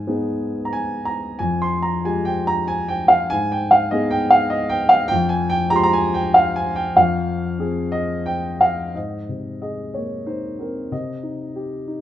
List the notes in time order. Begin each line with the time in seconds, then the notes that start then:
Already playing: G#2 G#5
0.07 B3 D#4 G#4
0.65 A#5
0.73 G#5
1.05 A#5
1.39 F2 G#5
1.62 C6
1.82 A#5
2.04 G#3 F4 G4 G#5
2.25 G5
2.47 A#5
2.68 G#5
2.88 G5
3.08 F5
3.30 G#2 G#5
3.52 G5
3.71 F5
3.91 B3 D#4 G#4 D#5
4.11 G5
4.30 F5
4.50 D#5
4.69 G5
4.89 F5
5.08 F2 G5
5.29 G#5
5.50 G5
5.70 G#3 F4 G4 A#5
5.76 C6
5.83 A#5
5.93 G#5
6.14 G5
6.34 F5
6.56 G#5
6.76 G5
6.96 F2 F5
7.59 C4 F4 G#4
7.92 D#5
8.26 G5
8.61 F5
8.95 G#2 D#5
9.29 C3
9.62 G#4 D#5
9.94 A#3 C#5
10.26 D#4 C5
10.59 C4 A#4
10.91 C3 D#5
11.23 D#4
11.56 G4
11.88 D#4